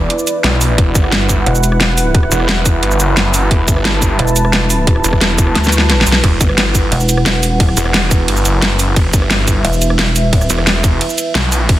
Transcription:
Already playing: E4 B4 D5
0.10 closed hi-hat
0.19 cabasa
0.27 closed hi-hat, cabasa
0.44 B1, snare, closed hi-hat
0.61 open hi-hat, cabasa
0.78 E1 F#5, kick, closed hi-hat
0.95 G1, kick, closed hi-hat, cabasa
1.04 cross-stick
1.12 snare, closed hi-hat
1.29 kick, closed hi-hat, cabasa
1.46 E1, closed hi-hat
1.55 cabasa
1.63 closed hi-hat, cabasa
1.72 cross-stick
1.80 snare, closed hi-hat
1.98 open hi-hat, cabasa
2.15 kick, closed hi-hat
2.23 cross-stick
2.32 E1, closed hi-hat, cabasa
2.40 cross-stick
2.49 snare, closed hi-hat
2.66 kick, closed hi-hat, cabasa
2.83 G1, closed hi-hat
2.91 cabasa
3.00 F#1, closed hi-hat, cabasa
3.17 snare, closed hi-hat
3.34 open hi-hat, cabasa
3.51 E1 A5, kick, closed hi-hat
3.68 G1, kick, closed hi-hat, cabasa
3.77 cross-stick
3.85 snare, closed hi-hat
4.02 kick, closed hi-hat, cabasa
4.19 E1, closed hi-hat
4.28 cabasa
4.36 closed hi-hat, cabasa
4.45 cross-stick
4.53 snare, closed hi-hat
4.70 open hi-hat, cabasa
4.87 kick, closed hi-hat
4.96 cross-stick
5.04 E1, closed hi-hat, cabasa
5.13 kick, cross-stick
5.21 snare, closed hi-hat
5.38 kick, closed hi-hat, cabasa
5.47 cross-stick
5.55 D2, snare, closed hi-hat
5.64 snare, cabasa
5.72 closed hi-hat, cabasa
5.78 snare
5.90 snare, closed hi-hat
6.01 snare
6.07 B1, open hi-hat, cabasa
6.12 snare
6.24 E1 F#5, kick, closed hi-hat, ride
6.41 G1, kick, closed hi-hat, ride, cabasa
6.49 cross-stick
6.58 snare, closed hi-hat, ride
6.75 kick, closed hi-hat, ride, cabasa
6.92 E1, closed hi-hat, ride
7.00 cabasa
7.09 closed hi-hat, ride, cabasa
7.17 cross-stick
7.26 snare, closed hi-hat, ride
7.43 open hi-hat, ride, cabasa
7.51 D#1
7.60 kick, closed hi-hat, ride
7.69 cross-stick
7.77 E1, closed hi-hat, ride, cabasa
7.86 cross-stick
7.94 snare, closed hi-hat, ride
8.11 kick, closed hi-hat, ride, cabasa
8.28 G1, closed hi-hat, ride
8.37 cabasa
8.45 F#1, closed hi-hat, ride, cabasa
8.62 snare, closed hi-hat, ride
8.79 open hi-hat, ride, cabasa
8.96 E1 E5, kick, closed hi-hat, ride
9.13 G1, kick, closed hi-hat, ride, cabasa
9.22 cross-stick
9.30 snare, closed hi-hat, ride
9.48 kick, closed hi-hat, ride, cabasa
9.65 E1, closed hi-hat, ride
9.73 cabasa
9.82 closed hi-hat, ride, cabasa
9.90 cross-stick
9.99 snare, closed hi-hat, ride
10.16 open hi-hat, ride, cabasa
10.24 D#1
10.33 kick, closed hi-hat, ride
10.41 cross-stick, cabasa
10.50 E1, closed hi-hat, ride, cabasa
10.58 cross-stick
10.67 snare, closed hi-hat, ride
10.84 kick, closed hi-hat, ride, cabasa
11.01 closed hi-hat, ride
11.10 cabasa
11.18 closed hi-hat, ride, cabasa
11.35 B1, snare, closed hi-hat, ride
11.52 open hi-hat, ride, cabasa
11.69 E1 F#5, kick, closed hi-hat, ride

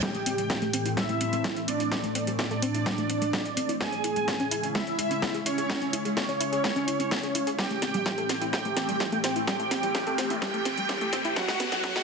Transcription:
0.03 A2 E3 G3 A3 C4 G4 G5, kick, snare, closed hi-hat
0.15 A3, closed hi-hat
0.26 C4, closed hi-hat
0.38 G3, closed hi-hat
0.50 G3, kick, snare, closed hi-hat
0.62 A3, closed hi-hat
0.73 C4, closed hi-hat
0.86 E4, closed hi-hat
0.97 G3 E4 E5, kick, snare, closed hi-hat
1.09 A3, closed hi-hat
1.21 C4, closed hi-hat
1.33 A3, closed hi-hat
1.44 G3, kick, snare, closed hi-hat
1.56 E4, closed hi-hat
1.68 C4 D4 D5, closed hi-hat
1.80 E4, closed hi-hat
1.92 G3, kick, snare, closed hi-hat
2.04 A3, closed hi-hat
2.15 C4, closed hi-hat
2.27 G3, closed hi-hat
2.39 G3 D4 D5, kick, snare, closed hi-hat
2.51 A3, closed hi-hat
2.62 C4, closed hi-hat
2.75 E4, closed hi-hat
2.86 G3, kick, snare, closed hi-hat
2.98 A3, closed hi-hat
3.10 C4, closed hi-hat
3.22 A3, closed hi-hat
3.33 G3, kick, snare, closed hi-hat
3.45 E4, closed hi-hat
3.57 C4, closed hi-hat
3.69 E4, closed hi-hat
3.81 C#3 G#3 C#4 E4 G#4 G#5, kick, snare, closed hi-hat
3.93 C#4, closed hi-hat
4.04 E4, closed hi-hat
4.16 G#3, closed hi-hat
4.28 G#3, kick, snare, closed hi-hat
4.40 C#4, closed hi-hat
4.51 E4, closed hi-hat
4.63 G#4, closed hi-hat
4.75 G#3 E4 E5, kick, snare, closed hi-hat
4.87 C#4, closed hi-hat
4.99 E4, closed hi-hat
5.11 C#4, closed hi-hat
5.22 G#3, kick, snare, closed hi-hat
5.34 G#4, closed hi-hat
5.46 C#4 E4 C#5, closed hi-hat
5.58 G#4, closed hi-hat
5.69 G#3, kick, snare, closed hi-hat
5.82 C#4, closed hi-hat
5.93 E4, closed hi-hat
6.05 G#3, closed hi-hat
6.17 G#3 C#4 C#5, kick, snare, closed hi-hat
6.29 C#4, closed hi-hat
6.40 E4, closed hi-hat
6.52 G#4, closed hi-hat
6.64 G#3, kick, snare, closed hi-hat
6.76 C#4, closed hi-hat
6.88 E4, closed hi-hat
7.00 C#4, closed hi-hat
7.11 G#3, kick, snare, closed hi-hat
7.23 G#4, closed hi-hat
7.35 E4, closed hi-hat
7.47 G#4, closed hi-hat
7.58 A2 E3 G3 A3 C4 G4 G5, kick, snare, closed hi-hat, riser
7.71 A3, closed hi-hat
7.82 C4, snare, closed hi-hat
7.94 G3, closed hi-hat, mid tom
8.06 G3, kick, snare, closed hi-hat
8.18 A3, closed hi-hat
8.29 C4, snare, closed hi-hat
8.41 E4, closed hi-hat
8.53 G3 G4 G5, kick, snare, closed hi-hat, mid tom
8.65 A3, closed hi-hat
8.77 C4, snare, closed hi-hat
8.89 G3, closed hi-hat
9.00 G3, kick, snare, closed hi-hat
9.12 A3, closed hi-hat, mid tom
9.24 C4, snare, closed hi-hat
9.36 E4, closed hi-hat
9.47 G3 G4 G5, kick, snare, closed hi-hat
9.60 A3, closed hi-hat
9.71 C4, snare, closed hi-hat, mid tom
9.83 G3, closed hi-hat
9.95 G3, kick, snare, closed hi-hat
10.07 A3, closed hi-hat
10.18 C4, snare, closed hi-hat
10.30 E4, closed hi-hat, mid tom
10.42 G3 G4 G5, kick, snare, closed hi-hat
10.54 A3, closed hi-hat
10.65 C4, snare, closed hi-hat
10.78 G3, closed hi-hat
10.89 G3, kick, snare, closed hi-hat, mid tom
11.01 A3, closed hi-hat
11.13 C4, snare, closed hi-hat
11.25 E4, closed hi-hat
11.36 C#3 F#3 G#3 D#4 E4 F#4 F#5, kick, snare, closed hi-hat
11.48 G#3, snare, closed hi-hat, mid tom
11.60 B3, snare, closed hi-hat
11.72 F#3, snare, closed hi-hat
11.84 F#3 F#4 F#5, kick, snare, closed hi-hat
11.96 G#3, snare, closed hi-hat

